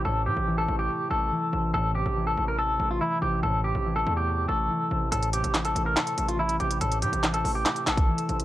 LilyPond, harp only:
\new Staff \with { instrumentName = "Harp" } { \clef bass \time 4/4 \key a \minor \tempo 4 = 142 <a, c a>8 c8 e8 a4 a8 e8 c8 | a,8 c8 e8 a4 a8 e8 c8 | a,8 c8 e8 a4 a8 e8 c8 | a,8 c8 e8 a4 a8 e8 c8 |
a,8 c8 e8 a4 a8 e8 c8 | }